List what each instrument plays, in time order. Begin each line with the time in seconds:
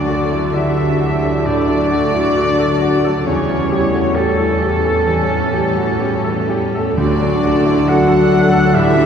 Already playing: grand piano D2 D4, double bass section D2, cello section D3, trombone section F#3 D4, french horn section D4, violin section D4 D5, flute F#4, oboe D5, clarinet D5
0.07 viola section A3, grand piano F#4
0.31 viola section F#3, grand piano E4
0.54 viola section D3, cello section E3, french horn section E4, grand piano F#4, flute G4, violin section E5, oboe E5, clarinet E5
0.77 viola section F#3, grand piano A4
1.00 viola section A3, grand piano F#4
1.22 viola section F#3, grand piano A4
1.45 grand piano A2, cello section D3, viola section D3, french horn section D4, flute F#4, oboe D5, clarinet D5, violin section D5
1.68 viola section F#3, grand piano D4
1.90 viola section A3, grand piano F#4
2.14 viola section F#3, grand piano E4
2.37 viola section D3, grand piano F#4
2.59 viola section F#3, grand piano A4
2.82 viola section A3, grand piano F#4
3.04 viola section F#3, grand piano A4
3.25 double bass section E2, grand piano E2, cello section C#3, viola section C#3 G3, trombone section G3 C#4, french horn section C#4, violin section C#4 C#5, flute E4, oboe C#5, clarinet C#5
3.49 viola section E3, grand piano C#4
3.72 viola section G3, grand piano G4
3.94 viola section A3, grand piano F#4
4.15 cello section A2, viola section G3, french horn section A3, flute C#4, grand piano G4, oboe A4, clarinet A4, violin section A4
4.38 viola section E3, grand piano A4
4.61 viola section C#3, grand piano G4
4.84 viola section E3, grand piano A4
5.07 grand piano E3, viola section G3
5.30 viola section A3, grand piano C#4
5.53 viola section G3, grand piano G4
5.77 viola section E3, grand piano F#4
6.00 viola section C#3, grand piano G4
6.24 viola section E3, grand piano A4
6.50 viola section G3, grand piano G4
6.74 viola section A3, grand piano A4
6.97 grand piano D2, double bass section D2, cello section D3, viola section D3 F#3, trombone section F#3 D4, violin section D4 D5, french horn section D4, flute F#4, oboe D5, clarinet D5
7.22 viola section F#3, grand piano D4
7.44 viola section A3, grand piano F#4
7.65 viola section F#3, grand piano E4
7.87 viola section D3, cello section F#3, grand piano F#4, french horn section F#4, flute A4, violin section F#5, clarinet F#5, oboe F#5
8.08 viola section F#3, grand piano A4
8.31 viola section A3, grand piano F#4
8.52 viola section F#3, grand piano A4
8.74 grand piano A2, viola section D3, cello section E3, french horn section E4, flute G4, violin section E5, clarinet E5, oboe E5
8.96 viola section F#3, grand piano D4